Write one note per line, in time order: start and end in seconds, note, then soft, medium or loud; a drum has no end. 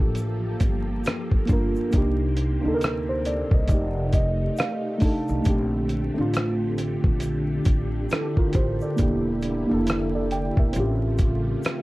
0.00 0.53 A1 medium
0.00 1.90 F3 medium
0.00 1.46 A#3 medium
0.00 3.65 A#3 medium
0.00 1.48 D4 medium
0.00 1.51 F4 medium
0.00 0.26 G4 medium
0.00 3.66 G4 medium
0.00 1.90 A4 medium
0.00 1.95 A4 medium
0.00 1.95 E5 medium
0.00 1.95 A5 medium
0.15 closed hi-hat medium
0.15 shaker medium
0.60 1.00 G1 medium
0.60 kick medium
0.60 closed hi-hat medium
0.60 shaker medium
1.04 cross-stick loud
1.04 closed hi-hat medium
1.04 shaker medium
1.32 kick medium
1.46 1.80 A#3 medium
1.46 1.81 D4 medium
1.46 kick medium
1.46 closed hi-hat medium
1.46 shaker soft
1.50 1.73 G1 loud
1.50 1.82 F4 medium
1.50 1.83 A#4 loud
1.76 shaker soft
1.91 2.56 C2 loud
1.91 5.43 C3 medium
1.91 2.36 A#3 medium
1.91 3.68 C4 medium
1.91 2.37 D4 medium
1.91 kick loud
1.91 closed hi-hat medium
1.91 shaker medium
1.95 2.38 D#4 medium
1.95 2.39 G4 loud
2.37 closed hi-hat medium
2.37 shaker soft
2.61 3.42 D2 medium
2.61 3.68 A#3 medium
2.61 2.81 D4 medium
2.66 2.82 D#4 medium
2.66 2.71 A4 medium
2.74 2.86 A#4 loud
2.81 3.08 D#4 soft
2.81 cross-stick loud
2.81 closed hi-hat medium
2.81 shaker medium
3.09 3.25 G4 medium
3.09 3.25 C5 medium
3.25 3.52 A4 medium
3.25 3.52 D5 medium
3.25 closed hi-hat medium
3.25 shaker soft
3.51 3.67 C2 medium
3.51 3.95 A#4 medium
3.51 3.95 D#5 medium
3.51 kick loud
3.67 4.47 F1 loud
3.67 4.78 A3 medium
3.67 8.95 A3 medium
3.67 5.44 D#4 medium
3.67 10.72 G4 medium
3.67 4.79 D5 medium
3.67 kick loud
3.67 closed hi-hat medium
3.67 shaker medium
3.71 4.80 D#4 medium
3.71 4.81 G4 medium
4.12 4.55 D#5 medium
4.12 kick medium
4.12 closed hi-hat medium
4.12 shaker medium
4.57 4.99 F5 medium
4.57 cross-stick loud
4.57 closed hi-hat medium
4.57 shaker medium
4.98 5.33 A3 medium
4.98 5.34 D4 medium
4.98 5.43 A5 medium
4.98 kick medium
4.98 open hi-hat soft
4.98 shaker soft
5.03 5.35 D#4 medium
5.03 5.36 A4 medium
5.28 5.44 B1 medium
5.28 shaker soft
5.42 10.72 D3 medium
5.42 5.88 A3 medium
5.42 5.89 C4 medium
5.42 7.21 C4 medium
5.42 kick loud
5.42 closed hi-hat medium
5.42 shaker medium
5.47 6.08 A#1 loud
5.47 5.90 D4 medium
5.47 5.92 G4 loud
5.89 closed hi-hat medium
5.89 shaker soft
6.14 6.95 A1 medium
6.14 7.28 A3 medium
6.14 7.30 C4 medium
6.19 7.31 D4 medium
6.19 7.32 F4 loud
6.34 cross-stick loud
6.34 closed hi-hat medium
6.34 shaker medium
6.78 closed hi-hat medium
6.78 shaker soft
7.04 7.58 A#1 medium
7.04 kick loud
7.20 8.97 D4 medium
7.20 closed hi-hat medium
7.20 shaker medium
7.65 8.05 A1 medium
7.65 kick medium
7.65 closed hi-hat medium
7.65 shaker medium
8.10 8.37 E4 medium
8.10 8.37 A4 medium
8.10 cross-stick loud
8.10 closed hi-hat medium
8.10 shaker medium
8.37 8.54 F4 medium
8.37 8.54 A#4 medium
8.37 kick loud
8.53 8.79 A1 medium
8.53 8.81 G4 medium
8.53 8.81 C5 medium
8.53 kick medium
8.53 closed hi-hat medium
8.53 shaker soft
8.81 9.24 A4 medium
8.81 9.24 D5 medium
8.81 shaker soft
8.96 9.61 E1 loud
8.96 9.41 A#3 medium
8.96 10.74 A#3 medium
8.96 9.42 D4 medium
8.96 10.74 E4 medium
8.96 kick loud
8.96 closed hi-hat medium
8.96 shaker medium
9.00 9.44 E4 medium
9.00 9.45 G4 medium
9.42 closed hi-hat medium
9.42 shaker soft
9.67 10.74 A#3 medium
9.67 10.75 D4 medium
9.71 10.48 F1 medium
9.71 10.76 E4 medium
9.71 9.89 A4 loud
9.87 cross-stick loud
9.87 closed hi-hat medium
9.87 shaker medium
10.15 10.31 A4 medium
10.15 10.31 D5 medium
10.31 10.57 D5 medium
10.31 10.57 G5 medium
10.31 closed hi-hat medium
10.31 shaker soft
10.57 10.73 E1 medium
10.57 11.01 A#4 medium
10.57 11.00 E5 medium
10.57 kick loud
10.73 11.53 A1 loud
10.73 11.82 C#3 medium
10.73 11.82 A3 medium
10.73 11.82 C4 medium
10.73 11.82 C#4 medium
10.73 11.82 F4 medium
10.73 11.82 G4 medium
10.73 closed hi-hat medium
10.73 shaker medium
10.77 11.82 F4 medium
10.77 11.82 G4 medium
11.18 kick loud
11.18 closed hi-hat medium
11.18 shaker medium
11.63 cross-stick loud
11.63 closed hi-hat medium
11.63 shaker medium